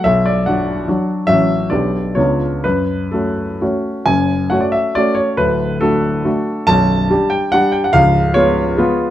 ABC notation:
X:1
M:3/4
L:1/16
Q:1/4=141
K:F#m
V:1 name="Grand piano"
e2 d2 f6 z2 | e4 d4 c4 | B4 A4 z4 | g4 f d e2 d2 c2 |
B4 A8 | a6 =g2 f2 g f | ^e4 c6 z2 |]
V:2 name="Grand piano"
B,,,4 [F,DF]4 [F,DF]4 | [A,,,F,CF]4 [B,,,B,D=G]4 [C,,B,D^E]4 | F,,4 [A,CF]4 [A,CF]4 | [F,,,F,,]4 [A,CF]4 [A,CF]4 |
[D,,,D,,]4 [A,DF]4 [A,DF]4 | [B,,,,B,,,]4 [=G,D=G]4 [G,DG]4 | [C,,,C,,]4 [G,B,^E]4 [G,B,E]4 |]